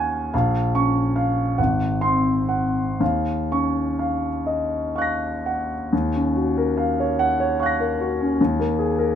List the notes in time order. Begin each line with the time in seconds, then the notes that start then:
Already playing: D#2 C#4 F5 F#5 G#5 C#6
0.34 A#1 F5
0.75 C#4 C#6
1.16 F5
1.58 G#1 F#5
2.01 C4 C6
2.49 F#5
3.00 D#2 F5
3.52 C#4 C#6
3.99 F5
4.47 D#5
4.96 F5 C#6 F#6
5.02 A#6
5.46 F#5
5.93 D#2
6.16 C#4
6.36 F#4
6.58 A#4
6.77 F5
7.00 C#5
7.19 F#5
7.40 C#5
7.60 F5 C#6 F#6
7.66 A#6
7.80 A#4
8.00 F#4
8.21 C#4
8.41 D#2
8.60 A#3
8.79 G#4
8.99 A#4